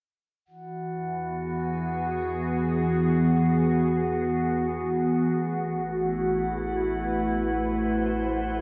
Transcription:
0.45 sub bass E2, ambient pad E3, glass harmonica F#4 F#5
1.20 ambient pad B3 F#4
1.34 ambient pad G#4
5.34 sub bass A1, ambient pad A3
5.82 ambient pad E4
6.33 ambient pad B4
7.47 ambient pad C5

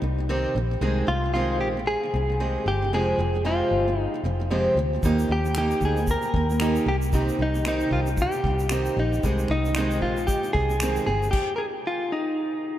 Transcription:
0.02 fingered electric bass C2, steel-string acoustic guitar C3 D#3
0.18 steel-string acoustic guitar C3 D#3
0.29 steel-string acoustic guitar C3 D#3 C4 D#4 G4
0.55 fingered electric bass A#1, steel-string acoustic guitar C3 D#3
0.71 steel-string acoustic guitar C3 D#3
0.81 fingered electric bass C2, steel-string acoustic guitar C3 D#3 G#3 C4 G#4
1.07 fingered electric bass C2, steel-string acoustic guitar C3 D#3, clean electric guitar F4
1.24 steel-string acoustic guitar C3 D#3
1.34 steel-string acoustic guitar C3 D#3 G#3 C4 G#4, clean electric guitar F4
1.61 fingered electric bass A#1, clean electric guitar G4
1.77 steel-string acoustic guitar C3 D#3
1.87 clean electric guitar G#4
2.03 steel-string acoustic guitar C3 D#3
2.14 fingered electric bass C2, steel-string acoustic guitar C3 D#3
2.30 steel-string acoustic guitar C3 D#3
2.40 steel-string acoustic guitar C3 D#3 G#3 C4 G#4
2.66 fingered electric bass G1, steel-string acoustic guitar C3 D#3, clean electric guitar G4
2.82 steel-string acoustic guitar C3 D#3
2.92 fingered electric bass F1, steel-string acoustic guitar F2 C3 F3 G#3 C4 G4, clean electric guitar G#4
3.18 fingered electric bass F1, steel-string acoustic guitar F2 C3 F3
3.34 steel-string acoustic guitar F2 C3 F3
3.44 steel-string acoustic guitar F2 C3 F3 G#3 C4 G4, clean electric guitar F4
3.71 fingered electric bass G1
3.88 steel-string acoustic guitar F2 C3 F3
4.00 clean electric guitar D#4
4.14 steel-string acoustic guitar F2 C3 F3
4.23 fingered electric bass F1, steel-string acoustic guitar F2 C3 F3
4.40 steel-string acoustic guitar F2 C3 F3
4.50 steel-string acoustic guitar F2 C3 F3 G#3 C4 G4
4.75 fingered electric bass D2, steel-string acoustic guitar F2 C3 F3
4.93 steel-string acoustic guitar F2 C3 F3
5.03 fingered electric bass D#2, steel-string acoustic guitar D#3 A#3 D#4 G4, kick, shaker
5.19 shaker
5.29 fingered electric bass D#2, steel-string acoustic guitar D#3 A#3, clean electric guitar G4
5.45 steel-string acoustic guitar D#3 A#3, shaker
5.55 steel-string acoustic guitar D#3 A#3 D#4 G4, clean electric guitar G4, finger snap, shaker
5.71 shaker
5.81 fingered electric bass D2, clean electric guitar G#4, kick, shaker
5.97 steel-string acoustic guitar D#3 A#3, shaker
6.07 clean electric guitar A#4, kick, shaker
6.22 steel-string acoustic guitar D#3 A#3, shaker
6.34 fingered electric bass D#2, steel-string acoustic guitar D#3 A#3, kick
6.50 steel-string acoustic guitar D#3 A#3, shaker
6.60 steel-string acoustic guitar D#3 A#3 D#4 G4, finger snap, shaker
6.75 shaker
6.86 fingered electric bass C2, steel-string acoustic guitar C3 D#3, clean electric guitar G4
7.02 shaker
7.13 steel-string acoustic guitar C3 D#3 C4 D#4 G4, kick, shaker
7.29 shaker
7.39 fingered electric bass C2, steel-string acoustic guitar C3 D#3, clean electric guitar D#4
7.55 steel-string acoustic guitar C3 D#3, shaker
7.65 steel-string acoustic guitar C3 D#3 C4 D#4 G4, clean electric guitar D#4, finger snap, shaker
7.80 shaker
7.91 fingered electric bass C2, clean electric guitar F4, kick
8.06 steel-string acoustic guitar C3 D#3, shaker
8.17 kick, shaker
8.22 clean electric guitar G4
8.32 steel-string acoustic guitar C3, shaker
8.36 steel-string acoustic guitar D#3
8.44 fingered electric bass C2, steel-string acoustic guitar C3 D#3, kick
8.59 steel-string acoustic guitar C3 D#3, shaker
8.69 steel-string acoustic guitar C3 D#3 C4 D#4 G4, finger snap, shaker
8.86 shaker
8.97 fingered electric bass A#1, steel-string acoustic guitar C3, clean electric guitar D#4
9.13 steel-string acoustic guitar C3 D#3, shaker
9.23 fingered electric bass C2, steel-string acoustic guitar C3 D#3 G#3 C4 G#4, kick, shaker
9.39 shaker
9.48 fingered electric bass C2, steel-string acoustic guitar C3 D#3, clean electric guitar D#4, finger snap
9.65 steel-string acoustic guitar C3 D#3, shaker
9.75 steel-string acoustic guitar C3 D#3 G#3 C4, clean electric guitar D#4, finger snap, shaker
9.79 steel-string acoustic guitar G#4
9.91 shaker
10.02 fingered electric bass A#1, clean electric guitar F4, kick
10.17 steel-string acoustic guitar C3 D#3, shaker
10.27 clean electric guitar G4, kick, shaker
10.43 steel-string acoustic guitar C3 D#3, shaker
10.53 fingered electric bass C2, steel-string acoustic guitar C3 D#3, clean electric guitar G#4, kick
10.70 steel-string acoustic guitar C3 D#3, shaker
10.80 steel-string acoustic guitar C3 D#3 G#3 C4 G#4, finger snap, shaker
10.96 shaker
11.06 fingered electric bass G1, steel-string acoustic guitar C3 D#3, clean electric guitar G#4
11.23 steel-string acoustic guitar C3 D#3, shaker
11.31 clean electric guitar G4, kick, crash
11.56 clean electric guitar G#4 A#4
11.87 clean electric guitar F4
12.12 clean electric guitar D#4

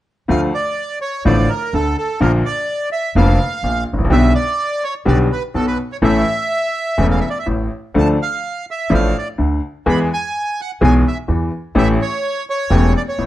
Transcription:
0.28 upright piano D2 D3 F3 A3 F4, upright bass D2, bandoneon F5
0.54 bandoneon D5
1.01 bandoneon C#5
1.25 upright bass A1, upright piano A1 A2 D3 F3 A3 F4, bandoneon D5
1.49 bandoneon A#4
1.73 upright bass D2, upright piano D2 D3, bandoneon A4
1.98 bandoneon A4
2.20 upright bass A#1, upright piano A#1 A#2 D3 F3 A#3 F4, bandoneon A#4
2.45 bandoneon D5
2.92 bandoneon E5
3.15 upright bass F1, upright piano F1 F2 D3 F3 A#3 F4, bandoneon F5
3.63 upright bass A#1, upright piano A#1 A#2
3.93 upright bass G#1, upright piano G#1
3.98 upright piano A1, upright bass A1
4.04 upright piano A#1, upright bass A#1
4.10 upright bass B1, upright piano B1 B2 D3 G3 B3 G4, bandoneon E5
4.35 bandoneon D5
4.84 bandoneon C#5
5.05 upright piano B1 B2 D3 G3 B3 G4, upright bass B1, bandoneon D5
5.33 bandoneon B4
5.54 upright piano B1 B2, upright bass B1, bandoneon A4
5.67 bandoneon B4
5.92 bandoneon C#5
6.02 upright bass A1, upright piano A1 A2 E3 A3 C#4 A4, bandoneon E5
6.98 upright piano E1 E2 E3 A3 C#4 A4, upright bass E1
7.11 bandoneon F5
7.21 bandoneon E5
7.30 bandoneon D5
7.39 bandoneon E5
7.46 upright piano A1 A2, upright bass A1
7.94 upright piano D2 D3 F3 A3 D4 A4, upright bass D2, bandoneon A5
8.22 bandoneon F5
8.71 bandoneon E5
8.90 upright piano A1 A2 F3 A3 D4 A4, upright bass A1
8.94 bandoneon F5
9.18 bandoneon D5
9.38 upright piano D2 D3, upright bass D2
9.86 upright piano E2 E3 G#3 B3 G#4, upright bass E2, bandoneon B5
10.13 bandoneon G#5
10.61 bandoneon F#5
10.81 upright bass B1, upright piano B1 B2 E3 G#3 B3 G#4, bandoneon G#5
11.08 bandoneon E5
11.28 upright piano E2 E3, upright bass E2
11.75 upright bass A1, upright piano A1 A2 E3 A3 C#4 G4, bandoneon E5
12.02 bandoneon C#5
12.50 bandoneon C#5
12.70 upright bass E1, upright piano E1 E2 E3 A3 C#4 G4
12.97 bandoneon D5
13.09 bandoneon C#5
13.18 upright bass A1, upright piano A1 A2

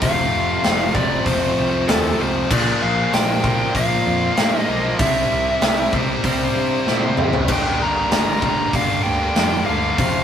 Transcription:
0.01 picked electric bass F1, distorted electric guitar F2 C3 F3 A3 C4, tonewheel organ F3 C4 G4, lead electric guitar F5, kick, open hi-hat
0.35 picked electric bass F1
0.64 picked electric bass F1, distorted electric guitar F2 C3 F3 A3 C4, snare, open hi-hat
0.94 picked electric bass F1, distorted electric guitar F2 C3 F3 A3 C4, lead electric guitar D5, kick
1.26 picked electric bass F1, distorted electric guitar F2 C3 F3 A3 C4, lead electric guitar C5, kick, open hi-hat
1.58 picked electric bass C2
1.87 picked electric bass D#2, distorted electric guitar F2 C3 F3 A3 C4, lead electric guitar A4, snare, open hi-hat
2.05 snare
2.19 picked electric bass C2, distorted electric guitar F2 C3 F3 A3 C4, lead electric guitar C5
2.50 picked electric bass A#1, distorted electric guitar A#2 F3 A#3 D4, tonewheel organ A#3 F4 C5, lead electric guitar D5, kick, crash
2.82 picked electric bass A#1, lead electric guitar F5
3.13 picked electric bass A#1, distorted electric guitar A#2 F3 A#3 D4, lead electric guitar G5, snare, open hi-hat
3.43 picked electric bass A#1, distorted electric guitar A#2 F3 A#3 D4, kick
3.75 picked electric bass A#1, distorted electric guitar A#2 F3 A#3 D4, lead electric guitar F5, kick, open hi-hat
4.06 picked electric bass F2
4.37 picked electric bass G2, distorted electric guitar A#2 F3 A#3 D4, snare, open hi-hat
4.59 lead electric guitar D#5
4.68 picked electric bass B1, distorted electric guitar A#2 F3 A#3 D4
4.99 picked electric bass C2, distorted electric guitar C3 G3 C4 E4, tonewheel organ C4 G4 D5, lead electric guitar E5, kick, open hi-hat
5.32 picked electric bass C2
5.61 picked electric bass C2, distorted electric guitar C3 G3 C4 E4, snare, open hi-hat
5.93 picked electric bass C2, distorted electric guitar C3 G3 C4 E4, lead electric guitar C5, kick
6.23 picked electric bass C2, distorted electric guitar C3 G3 C4 E4, lead electric guitar C5, kick, open hi-hat
6.55 picked electric bass G2
6.86 picked electric bass A#2, distorted electric guitar C3 G3 C4 E4, snare
7.03 high tom
7.17 picked electric bass A1, distorted electric guitar C3 G3 C4 E4, mid tom
7.33 floor tom
7.48 picked electric bass G1, distorted electric guitar G2 D3 G3 A#3 D4, tonewheel organ G3 D4 A#4, kick, crash
7.52 lead electric guitar G5
7.81 picked electric bass G1, lead electric guitar A#5
8.11 picked electric bass G1, distorted electric guitar G2 D3 G3 A#3 D4, snare, open hi-hat
8.42 picked electric bass G1, distorted electric guitar G2 D3 G3 A#3 D4, lead electric guitar A#5, kick
8.73 picked electric bass G1, distorted electric guitar G2 D3 G3 A#3 D4, lead electric guitar F5, kick, open hi-hat
9.03 picked electric bass D2, lead electric guitar G5
9.35 picked electric bass F2, distorted electric guitar G2 D3 G3 A#3 D4, snare, open hi-hat
9.66 picked electric bass D2, distorted electric guitar G2 D3 G3 A#3, lead electric guitar F5
9.70 distorted electric guitar D4
9.98 picked electric bass F1, distorted electric guitar F2 C3 F3 A3 C4, tonewheel organ F3 C4 G4, kick, open hi-hat

